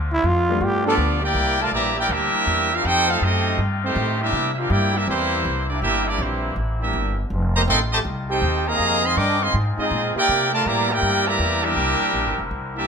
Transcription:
Already playing: D2 D3 A3 C4 F4
0.13 E4
0.24 F2 F4
0.49 G3 A3 B3 D4 F4
0.61 G2 G3 B3 G4
0.85 F3 B3 D4 F4 G4 A4 D5
0.97 D2
1.22 A#3 E4 G4 A#4 D5 G5
1.34 C2 D3 A#3 C4 E4
1.60 A3 F4 A#4 D5 A5
1.72 A#1 E3 G3 A#3 G4 D5 E5 A#5
1.96 A#3 E4 G4 A#4 D5 G5
2.09 D2 G3 A#3 D4 E4 G4 A#4 E5
2.34 muted upright bass stroke
2.47 E2
2.73 D4 F4 G4 A#4 F5
2.85 F2 D#3 A3 C4 D#4 F4 G4 A4 C5 G5
3.10 A3 C4 D#4 F4 A4 C5 F5
3.21 F#2 A3 C4 D#4 G4 A4 D#5
3.58 G2
3.84 D#3 A3 C4 D#4 G4 C5
3.96 A2
4.20 G3 A#3 D4 E4 G4 A#4 E5
4.33 C3 D3 A#3 C4 E4
4.54 E5
4.58 D4 F4 G4 A#4 F5
4.70 G2 A#3 E4 G4 A#4 D5 G5
4.96 G3 A#3 D4 E4 G4 A#4 E5
5.07 E2 E3 G3 A#3 C4 E4 G4 C5
5.45 C2
5.69 G3 A#3 D4 E4 G4 D5
5.82 G1 G3 A#3 D4 E4 G4 A#4 E5
6.07 G3 A#3 D4 E4 G4 D5
6.18 A#1 E3 G3 A#3 C4 E4 G4 C5
6.56 A1
6.80 G3 A#3 D4 E4 G4 A#4 E5
6.93 G1
7.30 F1 D#3 G3 A3 F4
7.56 A#3 G4 C5 D#5 A#5
7.68 A1 D#3 A3 C4 A4 D#5 G5 C6
7.92 C3 D#3 A3 G4 C5 D#5 A5
8.05 C2
8.29 C4 D#4 G4 A4 C5 G5
8.42 D#2
8.67 C3 D#3 A#3 G#4 D#5 F5 A#5
8.79 F2 C4 G#4
9.04 D#3 G#3 C4 G#4 D#5 F5 C6
9.17 G2 D4 A#4 D#5 G5 D6
9.42 D#3 G#3 C4 G#4 D#5 F5 C6
9.54 G#2
9.78 G#3 C4 D#4 F4 G#4 D#5, muted upright bass stroke
9.91 A#2
10.15 A#3 E4 G4 A#4 D5 G5, muted upright bass stroke
10.28 C3 D3 C4 E4 A#4
10.52 A3 F4 A#4 D5 A5
10.65 A2 E3 G3 A#3 G4 D5 E5 A#5
10.90 A#3 E4 G4 A#4 D5 G5
11.02 G2
11.27 E3 G3 A#3 G4 D5 E5 A#5
11.39 E2
11.63 G3 A#3 D4 E4 G4 A#4 E5
11.76 C2
12.01 muted upright bass stroke
12.13 A#1
12.26 G1
12.38 E1
12.51 C2
12.75 G3 A#3 D4 E4 G4 A#4 E5

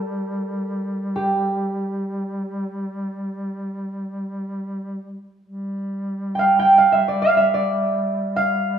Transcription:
Already playing: G3 A4
1.16 G4
5.45 G3
6.35 F5 G5
6.59 G5
6.78 F5
6.92 E5
7.08 D5
7.22 F5
7.37 E5
7.54 D5
8.36 F5

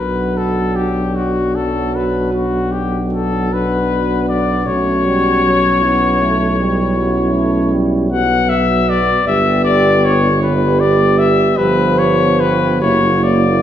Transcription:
Already playing: B1 F#3 D4 F#4 B4
0.37 A4
0.76 G4
1.16 F#4
1.55 A4
1.96 B4
2.33 D4 F#4
2.72 G4
3.13 A4
3.52 B3 D4 B4
4.29 D5
4.66 B1 A3 C#4 F#4 C#5
5.06 G3
5.44 F#3
5.82 B3 E4
6.21 A3
6.59 G3
6.95 F#3 C#4
7.35 A3
7.72 G3
8.10 F#3 B3 F#4 F#5
8.49 E5
8.89 D5
9.25 G1 G3 B3 G4 E5
9.65 D5
10.05 C#5
10.42 G3 B3 G4 B4
10.80 D5
11.18 E5
11.57 G1 F3 B3 G4 B4
11.99 C#5
12.40 B4
12.81 F#1 F#3 A#3 E4 C#5
13.23 D5

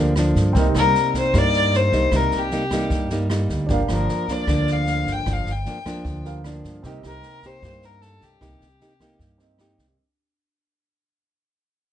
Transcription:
Already playing: D2 D3 F3 D4 G4 A#4 F5
0.00 A#3 D4
0.16 F3 A#3 D4, cross-stick, snare
0.35 G2, kick, snare
0.53 C2 C3 G3 A#3 C4 G4 A#4, kick, snare
0.57 D#4
0.74 C2 G3 A#3 D#4 A#4, cross-stick, snare
0.95 snare
1.14 kick, snare
1.18 C5
1.34 G2 G3 A#3 D#4, kick, cross-stick, snare
1.38 D5
1.53 snare
1.73 C5, snare
1.92 C2 G3 A#3 D#4, kick, snare
2.12 C2 C3 G3 A#3 D#4, kick, cross-stick, snare
2.16 A#4
2.31 C2, snare
2.37 G4
2.51 G3 A#3 D#4, snare
2.71 G3 A#3 D#4, kick, cross-stick, snare
2.90 G2, kick, snare
3.10 G3 A#3 D#4, snare
3.30 G3 A#3 D#4, cross-stick, snare
3.49 D2, kick, snare
3.66 G1 G2 F3 D4 G4, kick, snare
3.71 A#3 D4 A#4 F5
3.88 G1 F3 A#3 D4, cross-stick, snare
3.94 A#4
4.09 snare
4.28 F3 A#3 D4, kick, snare
4.32 D5
4.47 D2 D3 F3 A#3 D4, kick, cross-stick, snare
4.67 snare
4.73 F5
4.87 snare
5.06 G1, kick, snare
5.12 G5
5.26 G1 G2 F3 A#3 D4, kick, cross-stick, snare
5.33 F5
5.46 G1, snare
5.52 G5
5.65 F3 A#3 D4, snare
5.85 F3 A#3 D4, kick, cross-stick, snare
6.05 D2 D3, kick, snare
6.24 D4 G4 A#4 F5, snare
6.44 F3 A#3 D4, cross-stick, snare
6.64 G2, kick, snare
6.83 C2 C3 A#3 C4 D#4 G4 A#4, kick, snare
6.87 G4 D#5
7.03 C2 A#3 D#4 G4, cross-stick, snare
7.08 A#4
7.23 snare
7.42 A#3 D#4 G4 C5, kick, snare
7.63 G2 A#3 D#4 G4, kick, cross-stick, snare
7.82 A#4, snare
8.01 A4, snare
8.21 C2 G4, kick, snare
8.41 C2 C3 A#3 D#4 G4, kick, cross-stick, snare
8.61 C2, snare
8.81 A#3 D#4 G4, snare
9.00 A#3 D#4 G4, kick, cross-stick, snare
9.19 G2, kick, snare
9.38 C4 G4 A#4 D#5, snare
9.58 A#3 D#4 G4, cross-stick, snare
9.78 C2, kick, snare

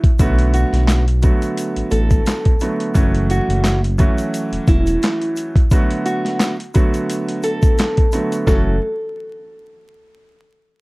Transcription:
0.04 kick, closed hi-hat
0.19 B1 D3 F#3 A3 B3 F#4, kick, closed hi-hat, shaker
0.38 closed hi-hat
0.54 F#4, closed hi-hat, shaker
0.73 B1, snare, closed hi-hat
0.88 snare, clap, closed hi-hat, shaker
1.08 closed hi-hat
1.22 D3 F#3 A3 B3 F#4, kick, closed hi-hat, shaker
1.42 closed hi-hat, shaker
1.57 closed hi-hat, shaker
1.76 A1, closed hi-hat
1.91 A1 A4, closed hi-hat, shaker
2.10 kick, closed hi-hat, shaker
2.26 snare, clap, closed hi-hat, shaker
2.45 kick, closed hi-hat
2.60 D3 F#3 A3 B3 F#4, closed hi-hat, shaker
2.80 closed hi-hat
2.94 F#1 E3 F#3 A3 C#4 F#4, kick, closed hi-hat, shaker
3.15 closed hi-hat
3.30 F#4, closed hi-hat, shaker
3.49 F#1, closed hi-hat
3.64 snare, clap, closed hi-hat, shaker
3.84 closed hi-hat
3.98 E3 F#3 A3 C#4 F#4, kick, closed hi-hat, shaker
4.18 closed hi-hat, shaker
4.34 closed hi-hat, shaker
4.52 E1, closed hi-hat
4.67 E1 E4, kick, closed hi-hat, shaker
4.87 closed hi-hat, shaker
5.02 snare, clap, closed hi-hat, shaker
5.21 closed hi-hat
5.36 closed hi-hat, shaker
5.56 kick, closed hi-hat
5.71 D3 F#3 A3 B3 F#4, kick, closed hi-hat, shaker
5.90 closed hi-hat
6.06 F#4, closed hi-hat, shaker
6.25 snare, closed hi-hat
6.40 snare, clap, closed hi-hat, shaker
6.60 closed hi-hat
6.74 D3 F#3 A3 B3 F#4, kick, closed hi-hat, shaker
6.94 closed hi-hat, shaker
7.10 closed hi-hat, shaker
7.28 closed hi-hat
7.43 A4, closed hi-hat, shaker
7.62 kick, closed hi-hat, shaker
7.78 snare, clap, closed hi-hat, shaker
7.97 kick, closed hi-hat
8.12 D3 F#3 A3 B3 F#4, closed hi-hat, shaker
8.32 closed hi-hat, shaker
8.47 F#1 E3 F#3 A3 C#4 F#4 A4, kick, snare, shaker

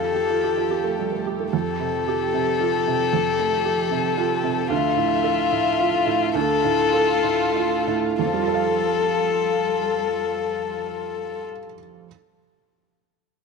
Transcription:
Already playing: F2 F3 G4 A4 F5
0.00 F4
0.15 G4
0.30 F4
0.43 G4
0.57 F4
0.70 G4
0.84 A3
0.99 G3
1.12 A3
1.26 G4
1.40 A3
1.53 F2 F3 G4 A4
1.79 C3
2.08 G4
2.34 C3
2.60 F4
2.87 C3
3.13 F2
3.39 A3
3.65 G4
3.91 C3
4.17 F4
4.43 C3
4.70 D2 F4 E5
4.96 A2
5.24 A4
5.52 A2
5.80 F4
6.07 A2
6.35 D2 A3 F4 A4
6.64 A2
6.93 A4
7.24 A2
7.56 F4
7.87 A2
8.18 F2 G3 F4 A4
8.26 F3
8.33 G3
8.40 F4
8.47 A4
8.54 F5

